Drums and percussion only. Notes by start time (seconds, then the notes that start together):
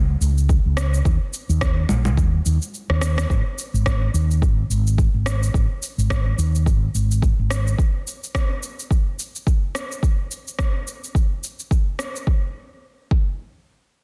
0.22 shaker
0.38 shaker
0.49 kick, shaker
0.77 cross-stick, shaker
0.94 shaker
1.05 kick, shaker
1.34 shaker
1.50 shaker
1.61 kick, cross-stick, shaker
1.89 low conga, shaker
2.05 low conga, shaker
2.17 kick, shaker
2.46 shaker
2.62 shaker
2.74 shaker
2.90 cross-stick
3.01 cross-stick, shaker
3.18 cross-stick, shaker
3.30 kick, shaker
3.59 shaker
3.75 shaker
3.86 kick, cross-stick, shaker
4.15 shaker
4.31 shaker
4.42 kick, shaker
4.71 shaker
4.87 shaker
4.98 kick, shaker
5.26 cross-stick, shaker
5.43 shaker
5.54 kick, shaker
5.83 shaker
5.99 shaker
6.10 kick, cross-stick, shaker
6.39 shaker
6.55 shaker
6.66 kick, shaker
6.95 shaker
7.11 shaker
7.22 kick, shaker
7.50 cross-stick, shaker
7.67 shaker
7.78 kick, shaker
8.07 shaker
8.24 shaker
8.35 kick, cross-stick, shaker
8.63 shaker
8.79 shaker
8.91 kick, shaker
9.19 shaker
9.36 shaker
9.47 kick, shaker
9.75 cross-stick, shaker
9.92 shaker
10.03 kick, shaker
10.31 shaker
10.48 shaker
10.59 kick, cross-stick, shaker
10.88 shaker
11.04 shaker
11.15 kick, shaker
11.44 shaker
11.60 shaker
11.71 kick, shaker
11.99 cross-stick, shaker
12.16 shaker
12.27 kick
13.11 kick